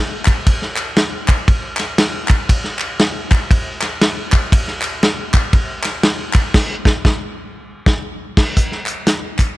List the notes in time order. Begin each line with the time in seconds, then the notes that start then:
0.25 kick, clap, ride
0.47 kick, ride
0.62 snare
0.76 clap, ride
0.96 snare, ride
1.28 kick, clap, ride
1.48 kick, ride
1.77 snare, clap, ride
1.98 snare, ride
2.28 kick, clap, ride
2.49 kick, ride
2.64 snare
2.79 clap, ride
2.99 snare, ride
3.31 kick, clap, ride
3.51 kick, ride
3.81 snare, clap, ride
4.01 snare, ride
4.32 kick, clap, ride
4.52 kick, ride
4.68 snare
4.82 clap, ride
5.03 snare, ride
5.34 kick, clap, ride
5.53 kick, ride
5.83 snare, clap, ride
6.03 snare, ride
6.33 kick, clap, ride
6.54 kick, snare, crash
6.85 kick, snare
7.05 kick, snare
7.86 kick, snare
8.37 kick, snare, crash
8.57 kick, closed hi-hat
8.72 snare
8.86 clap, closed hi-hat
9.07 snare, closed hi-hat
9.39 kick, clap, closed hi-hat